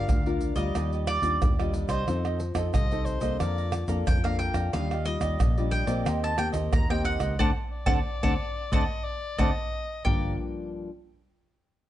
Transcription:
Already playing: nylon-string guitar D4 F4 A#4, mandolin F5
0.08 fingered electric bass D2, nylon-string guitar D3, cavaquinho G4 A#4 D5 F5, pandeiro, tamborim, shaker, surdo
0.26 nylon-string guitar D4 F4 A#4, cavaquinho A#4 D5 F5, pandeiro, shaker
0.41 pandeiro, shaker, surdo
0.56 fingered electric bass D2, nylon-string guitar G3 F4, cavaquinho A#4 D5 F5, mandolin D#5, pandeiro, shaker, surdo
0.75 fingered electric bass D#2, nylon-string guitar D#3, cavaquinho D4 G4 D5 D#5, pandeiro, tamborim, shaker, surdo
0.93 cavaquinho G4 D5 D#5, pandeiro, shaker
1.07 mandolin D5, pandeiro, tamborim, shaker
1.22 fingered electric bass D#2, nylon-string guitar G3 D4 F4, cavaquinho G4 D5, pandeiro, shaker, surdo
1.41 fingered electric bass D#2, nylon-string guitar A#2, pandeiro, tamborim, shaker, surdo
1.59 nylon-string guitar G3 D4 F4, cavaquinho G4 D5 D#5, pandeiro, tamborim, shaker
1.74 cavaquinho D4 G4 D5 D#5, pandeiro, shaker
1.89 fingered electric bass C2, cavaquinho G4 D5 D#5, mandolin C5, pandeiro, tamborim, shaker, surdo
2.08 fingered electric bass F2, nylon-string guitar F3 C4 D#4 A4, cavaquinho F4 A4 C5 D#5, pandeiro, tamborim, shaker, surdo
2.25 cavaquinho A4 C5 D#5, pandeiro, tamborim, shaker
2.40 muted cavaquinho stroke, pandeiro, shaker
2.55 fingered electric bass F2, nylon-string guitar C4 D#4 A4, cavaquinho A4 C5 D#5, pandeiro, tamborim, shaker, surdo
2.74 fingered electric bass C2, nylon-string guitar C3, cavaquinho F4 A4 C5 D#5, soprano saxophone D#5, pandeiro, tamborim, shaker, surdo
2.91 nylon-string guitar C4 D#4 A4, cavaquinho A4 C5 D#5, pandeiro, shaker
3.05 soprano saxophone C5, pandeiro, shaker, surdo
3.21 fingered electric bass C2, nylon-string guitar A#3 D4 A4, cavaquinho A4 C5 D#5, pandeiro, shaker, surdo
3.40 fingered electric bass F2, nylon-string guitar F3, cavaquinho A4 D5 F5 A#5, soprano saxophone D5, pandeiro, tamborim, shaker, surdo
3.58 cavaquinho D5 F5 A#5, pandeiro, shaker
3.72 muted cavaquinho stroke, pandeiro, tamborim, shaker
3.88 fingered electric bass F2, nylon-string guitar A#3 D4 A4, cavaquinho D5 F5 A#5, pandeiro, shaker, surdo
4.07 fingered electric bass F2, nylon-string guitar F3, mandolin G5, pandeiro, tamborim, shaker, surdo
4.24 nylon-string guitar A#3 D4 A4, cavaquinho D5 F5 A#5, mandolin F5, pandeiro, tamborim, shaker
4.38 cavaquinho A4 D5 F5 A#5, mandolin G5, pandeiro
4.54 fingered electric bass F2, cavaquinho D5 F5 A#5, pandeiro, tamborim, shaker, surdo
4.73 fingered electric bass D#2, nylon-string guitar D#3 G3 D4 F4, cavaquinho D4 G4 D5 D#5, mandolin F5, pandeiro, tamborim, shaker, surdo
4.91 cavaquinho G4 D5 D#5, pandeiro, tamborim, shaker
5.05 nylon-string guitar G3 F4, mandolin D#5, muted cavaquinho stroke, pandeiro, shaker
5.21 fingered electric bass D#2, cavaquinho G4 D5 D#5, pandeiro, tamborim, shaker, surdo
5.40 fingered electric bass A#1, nylon-string guitar A#2, cavaquinho D4 G4 D5 D#5, pandeiro, tamborim, shaker, surdo
5.57 nylon-string guitar G3 D4 F4, cavaquinho G4 D5 D#5, pandeiro, shaker
5.71 mandolin G5, pandeiro, shaker, surdo
5.87 fingered electric bass A#1, nylon-string guitar A#3 C4 G4, cavaquinho G4 D5 D#5, pandeiro, shaker, surdo
6.06 fingered electric bass D#2, nylon-string guitar D#3, cavaquinho D#4 A#4 C5 D#5, pandeiro, tamborim, shaker, surdo
6.23 cavaquinho A#4 C5 D#5, mandolin A5, pandeiro, shaker
6.38 nylon-string guitar A#3 C4 G4, mandolin G5, pandeiro, tamborim, shaker
6.52 fingered electric bass D#2, cavaquinho A#4 C5 D#5, pandeiro, shaker, surdo
6.73 fingered electric bass D#2, nylon-string guitar D#3, mandolin A#5, pandeiro, tamborim, shaker, surdo
6.89 nylon-string guitar A#3 C4 G4, cavaquinho A#4 C5 D#5, mandolin G5, pandeiro, tamborim, shaker
7.04 cavaquinho D#4 A#4 C5 D#5, mandolin F#5, pandeiro
7.19 fingered electric bass C#2, cavaquinho A#4 C5 D#5, pandeiro, tamborim, shaker, surdo
7.39 fingered electric bass D2, nylon-string guitar A3 C4 D4, cavaquinho A4 C5 D5, mandolin D5 F#5 A5, surdo
7.71 soprano saxophone D5
7.86 fingered electric bass D2, nylon-string guitar A3 C4 D4, cavaquinho A4 C5 D5, mandolin D5 F#5 A5, surdo
8.23 fingered electric bass D2, nylon-string guitar A3 C4 D4, cavaquinho A4 C5 D5, mandolin D5 F#5 A5, surdo
8.72 fingered electric bass D2, nylon-string guitar A3 C4 D4, cavaquinho A4 C5 D5, mandolin D5 F#5 A5, soprano saxophone D#5, surdo
9.04 soprano saxophone D5
9.38 fingered electric bass D2, nylon-string guitar A3 C4 D4, cavaquinho A4 C5 D5, mandolin D5 F#5 A5, soprano saxophone D#5, surdo
10.05 fingered electric bass G1, nylon-string guitar G2 F3 A#3 D4, cavaquinho G4 A#4 D5 F5, soprano saxophone D5, mandolin G5, surdo

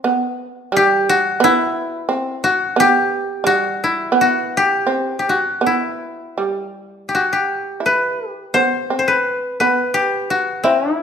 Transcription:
0.04 shamisen B3
0.72 shamisen G3
0.77 koto G4
1.09 koto F#4
1.40 shamisen B3, koto E4
2.09 shamisen C4
2.44 koto F#4
2.76 shamisen B3, koto G4
3.44 shamisen G3, koto F#4
3.84 koto E4
4.12 shamisen B3
4.21 koto F#4
4.57 koto G4
4.87 shamisen C4
5.19 koto G4
5.29 koto F#4
5.61 shamisen B3
5.66 koto E4
6.38 shamisen G3
7.09 koto G4
7.15 koto F#4
7.33 koto G4
7.80 shamisen E4
7.86 koto B4
8.31 koto G4
8.54 shamisen B3, koto C5
8.90 shamisen C4
8.99 koto C5
9.08 koto B4
9.60 shamisen B3, koto B4
9.94 koto G4
10.30 koto F#4
10.64 koto C4, shamisen E4
10.97 koto E4

